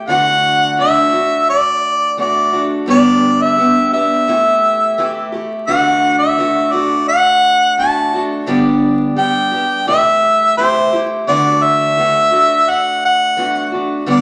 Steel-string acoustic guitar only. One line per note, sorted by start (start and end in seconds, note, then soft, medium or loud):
0.07 0.78 D3 medium
0.07 0.76 E3 medium
0.07 0.77 A3 medium
0.07 0.78 D4 medium
0.07 0.79 F#4 loud
0.77 1.13 E3 medium
0.77 1.13 A3 medium
0.77 1.12 D4 medium
0.77 1.11 F#4 medium
1.13 2.17 A3 soft
1.13 2.18 D4 soft
1.13 2.18 F#4 soft
2.17 2.53 E3 medium
2.17 2.53 A3 medium
2.17 2.52 D4 medium
2.17 2.51 F#4 medium
2.53 2.87 A3 soft
2.53 2.86 D4 soft
2.53 2.88 F#4 medium
2.86 3.57 G2 medium
2.86 3.58 D3 medium
2.86 3.56 G3 medium
2.86 3.57 B3 medium
2.86 3.58 D4 medium
2.86 3.58 G4 medium
3.57 3.93 G3 medium
3.57 3.93 B3 medium
3.57 3.92 D4 medium
3.57 3.91 G4 medium
3.92 4.28 G3 soft
3.92 4.29 B3 soft
3.92 4.28 D4 soft
3.92 4.28 G4 medium
4.27 4.98 C3 medium
4.27 4.97 E3 medium
4.27 4.98 A3 medium
4.27 4.98 E4 medium
4.27 4.99 G4 medium
4.98 5.33 E3 medium
4.98 5.33 A3 medium
4.98 5.33 E4 medium
4.98 5.31 G4 medium
5.32 5.67 A3 soft
5.32 5.68 E4 medium
5.32 5.68 G4 medium
5.67 6.38 D3 medium
5.67 6.37 E3 medium
5.67 6.37 A3 medium
5.67 6.38 D4 medium
5.67 6.38 F#4 medium
6.38 6.73 E3 medium
6.38 6.73 A3 medium
6.38 6.73 D4 medium
6.38 6.71 F#4 medium
6.73 7.77 A3 soft
6.73 7.78 D4 soft
6.73 7.78 F#4 medium
7.77 8.12 E3 medium
7.77 8.13 A3 medium
7.77 8.13 D4 medium
7.77 8.12 F#4 medium
8.13 8.47 A3 soft
8.13 8.47 D4 soft
8.13 8.48 F#4 medium
8.46 9.17 G2 medium
8.46 9.17 D3 medium
8.46 9.15 G3 medium
8.46 9.16 B3 medium
8.46 9.17 D4 medium
8.46 9.18 G4 loud
9.16 9.52 G3 medium
9.16 9.53 B3 medium
9.16 9.52 D4 medium
9.16 9.50 G4 medium
9.52 9.87 G3 soft
9.52 9.87 B3 soft
9.52 9.87 D4 medium
9.52 9.87 G4 medium
9.87 10.57 C3 medium
9.87 10.56 E3 medium
9.87 10.57 A3 medium
9.87 10.58 E4 medium
9.87 10.58 G4 medium
10.57 10.93 E3 medium
10.57 10.93 A3 medium
10.57 10.93 E4 medium
10.57 10.92 G4 medium
10.93 11.27 A3 soft
10.93 11.28 E4 soft
10.93 11.28 G4 medium
11.27 11.98 D3 medium
11.27 11.96 E3 medium
11.27 11.97 A3 medium
11.27 11.98 D4 medium
11.27 11.98 F#4 medium
11.97 12.32 E3 medium
11.97 12.32 A3 medium
11.97 12.31 D4 medium
11.97 12.30 F#4 medium
12.31 13.36 A3 soft
12.31 13.38 D4 medium
12.31 13.37 F#4 medium
13.37 13.72 E3 medium
13.37 13.73 A3 medium
13.37 13.72 D4 medium
13.37 13.71 F#4 medium
13.72 14.07 A3 soft
13.72 14.07 D4 soft
13.72 14.07 F#4 medium
14.06 14.21 G2 medium
14.06 14.21 D3 medium
14.06 14.21 G3 medium
14.06 14.21 B3 medium
14.06 14.21 D4 medium
14.06 14.21 G4 medium